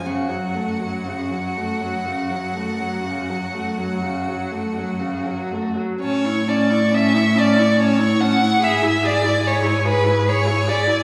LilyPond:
<<
  \new Staff \with { instrumentName = "Violin" } { \time 12/8 \key fis \minor \tempo 4. = 42 fis''1~ fis''4. r8 | \key a \major a''16 cis'''16 a''16 cis'''16 a''16 cis'''16 a''16 cis'''16 a''16 cis'''16 a''16 cis'''16 b''16 gis''16 b''16 gis''16 b''16 gis''16 b''16 gis''16 b''16 gis''16 b''16 gis''16 | }
  \new Staff \with { instrumentName = "Violin" } { \time 12/8 \key fis \minor fis'1~ fis'4.~ fis'16 r16 | \key a \major cis''8 d''8 e''8 d''8 cis''8 fis''8 e''8 d''8 cis''8 b'8 cis''8 d''8 | }
  \new Staff \with { instrumentName = "Viola" } { \time 12/8 \key fis \minor cis16 fis16 a16 fis16 cis16 fis16 a16 fis16 cis16 fis16 a16 fis16 cis16 fis16 a16 fis16 cis16 fis16 a16 fis16 cis16 fis16 a16 fis16 | \key a \major cis'16 e'16 cis'16 e'16 cis'16 e'16 cis'16 e'16 cis'16 e'16 cis'16 e'16 gis'16 e'16 gis'16 e'16 gis'16 e'16 gis'16 e'16 gis'16 e'16 gis'16 e'16 | }
  \new Staff \with { instrumentName = "Cello" } { \clef bass \time 12/8 \key fis \minor fis,1~ fis,4.~ fis,16 r16 | \key a \major a,2. gis,2. | }
>>